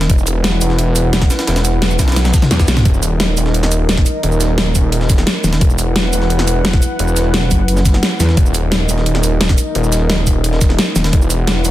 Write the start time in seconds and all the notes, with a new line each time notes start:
0.01 snare, closed hi-hat
0.09 E1 E4 B4 F#5, kick, closed hi-hat
0.18 cabasa
0.27 closed hi-hat, cabasa
0.44 snare, closed hi-hat
0.61 E1, closed hi-hat, open hi-hat, cabasa
0.70 snare
0.79 closed hi-hat
0.96 closed hi-hat, cabasa
1.13 E1, snare, closed hi-hat
1.22 kick, snare
1.30 snare, closed hi-hat, open hi-hat, cabasa
1.39 snare, closed hi-hat
1.47 E1, snare, closed hi-hat
1.56 snare, closed hi-hat, cabasa
1.65 snare, closed hi-hat, cabasa
1.82 snare, closed hi-hat
1.91 cabasa
1.99 B1, kick, snare, closed hi-hat, open hi-hat, cabasa
2.08 snare, closed hi-hat
2.12 snare, closed hi-hat
2.16 snare, closed hi-hat
2.25 snare, closed hi-hat, high tom, cabasa
2.34 kick, snare, closed hi-hat, cabasa
2.42 snare, closed hi-hat, mid tom
2.51 E2, snare, closed hi-hat
2.59 kick, snare, closed hi-hat, cabasa
2.68 B1, snare, closed hi-hat, open hi-hat, cabasa
2.77 snare, closed hi-hat, mid tom
2.85 D#1 D#4 A#4 D#5, kick, closed hi-hat
2.94 cabasa
3.03 closed hi-hat, cabasa
3.20 snare, closed hi-hat
3.37 D#1, closed hi-hat, open hi-hat, cabasa
3.46 snare
3.54 closed hi-hat
3.63 snare
3.72 closed hi-hat, cabasa
3.89 D#1, snare, closed hi-hat
3.97 kick, snare
4.06 closed hi-hat, open hi-hat, cabasa
4.23 D#1, closed hi-hat
4.32 cabasa
4.41 snare, closed hi-hat, cabasa
4.58 snare, closed hi-hat
4.75 D#1, kick, closed hi-hat, open hi-hat, cabasa
4.92 closed hi-hat
5.01 snare
5.10 kick, snare, closed hi-hat, cabasa
5.18 snare
5.27 snare, closed hi-hat
5.44 D#1, snare, closed hi-hat, open hi-hat, cabasa
5.53 snare, closed hi-hat
5.61 E1 E4 B4 F#5, kick, closed hi-hat
5.70 cabasa
5.79 closed hi-hat, cabasa
5.96 snare, closed hi-hat
6.13 E1, closed hi-hat, open hi-hat, cabasa
6.22 snare
6.30 closed hi-hat
6.39 snare
6.48 closed hi-hat, cabasa
6.65 E1, snare, closed hi-hat
6.73 kick, snare
6.82 closed hi-hat, open hi-hat, cabasa
6.99 E1, closed hi-hat
7.08 cabasa
7.17 snare, closed hi-hat, cabasa
7.34 snare, closed hi-hat
7.51 F#1, kick, closed hi-hat, open hi-hat, cabasa
7.68 closed hi-hat
7.77 snare, cabasa
7.85 kick, snare, closed hi-hat, cabasa
7.94 snare
8.03 snare, closed hi-hat
8.20 E2, snare, closed hi-hat, open hi-hat, cabasa
8.29 snare
8.37 D#1 D#4 A#4 D#5, kick, closed hi-hat
8.46 cabasa
8.54 closed hi-hat, cabasa
8.72 snare, closed hi-hat
8.89 D#1, closed hi-hat, open hi-hat, cabasa
8.98 snare
9.06 closed hi-hat
9.15 snare
9.23 closed hi-hat, cabasa
9.41 D#1, snare, closed hi-hat
9.49 kick, snare
9.58 closed hi-hat, open hi-hat, cabasa
9.75 D#1, closed hi-hat
9.84 cabasa
9.92 snare, closed hi-hat, cabasa
10.10 snare, closed hi-hat
10.27 D#1, kick, closed hi-hat, open hi-hat, cabasa
10.44 closed hi-hat
10.53 snare
10.61 kick, snare, closed hi-hat, cabasa
10.70 snare
10.78 snare, closed hi-hat
10.96 D#1, snare, closed hi-hat, open hi-hat, cabasa
11.04 snare, closed hi-hat
11.13 E1 E4 B4 F#5, kick, closed hi-hat
11.22 cabasa
11.30 closed hi-hat, cabasa
11.47 snare, closed hi-hat
11.65 E1, closed hi-hat, open hi-hat, cabasa